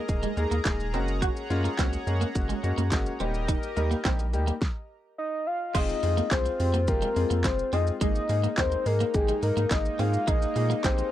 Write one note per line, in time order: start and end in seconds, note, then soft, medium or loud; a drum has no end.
0.00 3.16 G#4 medium
0.00 0.91 A#4 medium
0.00 0.91 D#5 medium
0.00 4.57 A#5 medium
0.08 0.27 D#1 loud
0.08 0.27 G#3 medium
0.08 0.27 A#3 medium
0.08 0.27 D#4 medium
0.08 0.27 G#4 loud
0.08 kick loud
0.08 closed hi-hat medium
0.08 shaker medium
0.23 0.31 G#3 medium
0.23 shaker medium
0.37 0.46 D#2 medium
0.37 0.55 G#3 medium
0.37 0.55 A#3 medium
0.37 0.56 D#4 medium
0.37 0.56 G#4 medium
0.37 muted clean electric guitar stroke soft
0.37 closed hi-hat medium
0.37 shaker medium
0.51 0.60 D#2 loud
0.51 0.60 A#3 medium
0.51 shaker medium
0.65 0.95 D#1 loud
0.65 0.84 G#3 loud
0.65 0.84 A#3 loud
0.65 0.84 D#4 loud
0.65 0.84 G#4 loud
0.65 kick loud
0.65 snare loud
0.65 clap loud
0.65 closed hi-hat medium
0.65 shaker medium
0.80 shaker soft
0.93 1.30 F#1 loud
0.93 1.39 G#3 medium
0.93 1.39 A#3 medium
0.93 1.02 C4 medium
0.93 1.39 C#4 medium
0.93 1.39 F#4 loud
0.93 3.18 C#5 medium
0.93 3.18 F#5 medium
0.93 closed hi-hat medium
0.93 shaker medium
1.08 shaker medium
1.22 1.30 F#4 medium
1.22 kick loud
1.22 closed hi-hat medium
1.22 shaker medium
1.37 shaker soft
1.50 1.69 F#2 medium
1.50 1.69 G#3 loud
1.50 1.69 A#3 loud
1.50 1.69 C#4 loud
1.50 1.69 F4 loud
1.50 muted clean electric guitar stroke soft
1.50 closed hi-hat medium
1.50 shaker medium
1.64 1.73 A#3 medium
1.64 shaker medium
1.78 1.97 C#2 medium
1.78 1.97 G#3 medium
1.78 1.97 A#3 medium
1.78 1.87 C4 medium
1.78 1.97 C#4 medium
1.78 1.97 F#4 loud
1.78 kick loud
1.78 snare loud
1.78 clap loud
1.78 closed hi-hat medium
1.78 shaker medium
1.93 muted clean electric guitar stroke soft
1.93 shaker medium
2.07 2.25 F#2 loud
2.07 2.25 G#3 medium
2.07 2.25 A#3 medium
2.07 2.25 C#4 medium
2.07 2.25 G#4 loud
2.07 closed hi-hat medium
2.07 shaker medium
2.21 2.29 A#3 medium
2.21 shaker medium
2.35 2.54 F#1 loud
2.35 2.53 G#3 medium
2.35 2.54 A#3 medium
2.35 2.54 C#4 medium
2.35 2.54 F#4 loud
2.35 kick loud
2.35 closed hi-hat medium
2.35 shaker medium
2.49 2.58 G#3 medium
2.49 shaker medium
2.63 2.73 F#2 medium
2.63 2.82 G#3 medium
2.63 2.82 A#3 medium
2.63 2.82 C#4 medium
2.63 2.82 F#4 loud
2.63 muted clean electric guitar stroke soft
2.63 closed hi-hat medium
2.63 shaker medium
2.78 2.93 F#2 loud
2.78 2.86 A#3 medium
2.78 shaker medium
2.91 3.10 F#1 loud
2.91 3.10 G#3 loud
2.91 3.10 A#3 loud
2.91 3.10 C#4 loud
2.91 3.10 F#4 loud
2.91 kick loud
2.91 snare loud
2.91 clap loud
2.91 closed hi-hat medium
2.91 shaker medium
3.06 shaker soft
3.20 3.57 D#1 medium
3.20 3.65 G3 medium
3.20 3.65 A#3 medium
3.20 3.28 C4 medium
3.20 3.65 D#4 medium
3.20 4.60 G4 medium
3.20 3.66 G4 loud
3.20 4.60 A#4 medium
3.20 4.60 D#5 medium
3.20 closed hi-hat medium
3.20 shaker medium
3.34 shaker medium
3.48 3.57 D#4 medium
3.48 kick loud
3.48 closed hi-hat medium
3.48 shaker medium
3.63 shaker soft
3.76 3.95 D#2 medium
3.76 3.95 G3 loud
3.76 3.95 A#3 loud
3.76 3.95 D#4 loud
3.76 3.95 A#4 loud
3.76 muted clean electric guitar stroke soft
3.76 closed hi-hat medium
3.76 shaker medium
3.91 3.99 A#3 medium
3.91 shaker medium
4.05 4.35 A#1 medium
4.05 4.23 G3 medium
4.05 4.23 A#3 medium
4.05 4.13 C4 medium
4.05 4.24 D#4 medium
4.05 4.24 G4 loud
4.05 kick loud
4.05 snare loud
4.05 clap loud
4.05 closed hi-hat medium
4.05 shaker medium
4.19 muted clean electric guitar stroke soft
4.19 shaker medium
4.33 4.52 D#2 loud
4.33 4.52 G3 medium
4.33 4.52 A#3 medium
4.33 4.52 D#4 medium
4.33 4.52 G4 loud
4.33 closed hi-hat medium
4.33 shaker medium
4.47 4.56 A#3 medium
4.47 shaker medium
4.62 kick loud
4.62 snare medium
5.18 5.48 D#5 loud
5.47 5.76 F5 loud
5.74 5.93 F1 loud
5.74 11.12 G#3 medium
5.74 5.93 G#3 loud
5.74 7.99 C4 medium
5.74 5.93 C4 medium
5.74 7.99 F4 medium
5.74 5.83 F4 medium
5.74 5.93 F4 medium
5.74 5.93 G#4 loud
5.74 6.33 D#5 loud
5.74 kick loud
5.74 closed hi-hat medium
5.74 crash loud
5.74 shaker medium
5.89 shaker soft
6.03 6.22 F2 loud
6.03 6.21 G#3 medium
6.03 6.21 C4 medium
6.03 6.22 F4 medium
6.03 6.22 G#4 medium
6.03 muted clean electric guitar stroke soft
6.03 open hi-hat medium
6.03 shaker medium
6.17 6.26 A#3 medium
6.17 shaker medium
6.31 6.50 C2 medium
6.31 6.50 G#3 medium
6.31 6.40 C4 medium
6.31 6.50 C4 medium
6.31 6.50 F4 medium
6.31 6.50 G#4 medium
6.31 6.87 C5 loud
6.31 kick loud
6.31 snare loud
6.31 clap loud
6.31 closed hi-hat medium
6.31 shaker medium
6.45 muted clean electric guitar stroke soft
6.45 shaker medium
6.60 6.89 F2 loud
6.60 6.78 G#3 medium
6.60 6.78 C4 medium
6.60 6.78 F4 medium
6.60 6.78 G4 medium
6.60 open hi-hat medium
6.60 shaker medium
6.74 6.82 A#3 medium
6.74 shaker medium
6.88 7.06 F1 loud
6.88 7.06 G#3 loud
6.88 7.06 C4 medium
6.88 7.06 F4 medium
6.88 7.07 G4 loud
6.88 7.47 A#4 loud
6.88 kick loud
6.88 closed hi-hat medium
6.88 shaker medium
7.02 7.11 G#3 medium
7.02 shaker medium
7.16 7.25 F2 loud
7.16 7.35 G#3 medium
7.16 7.35 C4 medium
7.16 7.35 F4 medium
7.16 7.35 G#4 medium
7.16 muted clean electric guitar stroke soft
7.16 open hi-hat medium
7.16 shaker medium
7.30 7.46 F2 loud
7.30 7.39 A#3 medium
7.30 shaker medium
7.44 7.63 F1 loud
7.44 7.63 G#3 medium
7.44 7.63 C4 medium
7.44 7.63 F4 medium
7.44 7.63 G#4 medium
7.44 7.72 C5 loud
7.44 kick loud
7.44 snare loud
7.44 clap loud
7.44 closed hi-hat medium
7.44 shaker medium
7.59 shaker medium
7.73 7.91 F2 loud
7.73 7.91 G#3 medium
7.73 7.81 C4 medium
7.73 7.91 C4 medium
7.73 7.92 F4 medium
7.73 7.92 G#4 medium
7.73 7.86 D#5 loud
7.73 open hi-hat medium
7.73 shaker medium
7.87 shaker medium
8.01 8.20 G#1 loud
8.01 8.20 G#3 loud
8.01 8.09 G#3 medium
8.01 11.12 A#3 medium
8.01 8.20 A#3 medium
8.01 11.12 D#4 medium
8.01 8.20 D#4 medium
8.01 8.20 G#4 loud
8.01 8.54 D#5 loud
8.01 kick loud
8.01 closed hi-hat medium
8.01 shaker medium
8.15 shaker soft
8.29 8.48 G#2 loud
8.29 8.48 G#3 medium
8.29 8.48 A#3 medium
8.29 8.48 D#4 medium
8.29 8.48 G#4 medium
8.29 muted clean electric guitar stroke soft
8.29 open hi-hat medium
8.29 shaker medium
8.44 8.52 A#3 medium
8.44 shaker medium
8.57 8.76 D#2 loud
8.57 8.76 G#3 medium
8.57 8.76 A#3 medium
8.57 8.66 C4 medium
8.57 8.76 D#4 medium
8.57 8.76 A#4 medium
8.57 8.88 C5 loud
8.57 kick loud
8.57 snare medium
8.57 clap loud
8.57 closed hi-hat medium
8.57 shaker medium
8.72 muted clean electric guitar stroke soft
8.72 shaker medium
8.86 9.04 G#2 medium
8.86 9.04 G#3 medium
8.86 9.04 A#3 medium
8.86 9.05 D#4 medium
8.86 9.05 G#4 medium
8.86 9.16 A#4 loud
8.86 open hi-hat medium
8.86 shaker medium
9.00 9.09 A#3 medium
9.00 shaker medium
9.14 9.33 G#1 loud
9.14 9.33 G#3 loud
9.14 9.33 A#3 medium
9.14 9.33 D#4 medium
9.14 9.33 G4 loud
9.14 9.42 G#4 loud
9.14 kick loud
9.14 closed hi-hat medium
9.14 shaker medium
9.28 9.37 G#3 medium
9.28 shaker medium
9.43 9.52 G#2 loud
9.43 9.61 G#3 medium
9.43 9.61 A#3 medium
9.43 9.61 D#4 medium
9.43 9.72 A#4 loud
9.43 9.61 A#4 medium
9.43 muted clean electric guitar stroke soft
9.43 open hi-hat medium
9.43 shaker medium
9.57 9.66 G#2 loud
9.57 9.65 A#3 medium
9.57 shaker medium
9.71 9.89 G#1 loud
9.71 9.89 G#3 medium
9.71 9.89 A#3 medium
9.71 9.89 D#4 medium
9.71 9.90 G#4 medium
9.71 10.01 D#5 loud
9.71 kick loud
9.71 snare loud
9.71 clap loud
9.71 closed hi-hat medium
9.71 shaker medium
9.85 shaker medium
9.99 10.18 G#2 loud
9.99 10.18 G#3 medium
9.99 10.18 A#3 medium
9.99 10.08 C4 medium
9.99 10.18 D#4 medium
9.99 10.18 G#4 medium
9.99 10.29 F5 loud
9.99 open hi-hat medium
9.99 shaker medium
10.13 shaker medium
10.27 10.46 A#1 loud
10.27 10.46 G#3 loud
10.27 10.46 A#3 medium
10.27 10.46 D#4 medium
10.27 10.36 D#4 medium
10.27 10.46 G#4 loud
10.27 10.86 D#5 loud
10.27 kick loud
10.27 closed hi-hat medium
10.27 shaker medium
10.42 shaker soft
10.56 10.74 A#2 loud
10.56 10.74 G#3 medium
10.56 10.74 A#3 medium
10.56 10.74 D#4 medium
10.56 10.74 G#4 medium
10.56 muted clean electric guitar stroke soft
10.56 open hi-hat medium
10.56 shaker medium
10.70 10.78 A#3 medium
10.70 shaker medium
10.84 11.03 A#1 loud
10.84 11.02 G#3 medium
10.84 11.03 A#3 medium
10.84 10.92 C4 medium
10.84 11.03 D#4 medium
10.84 11.03 G4 medium
10.84 11.12 C5 loud
10.84 kick loud
10.84 snare loud
10.84 clap loud
10.84 closed hi-hat medium
10.84 shaker medium
10.98 muted clean electric guitar stroke soft
10.98 shaker medium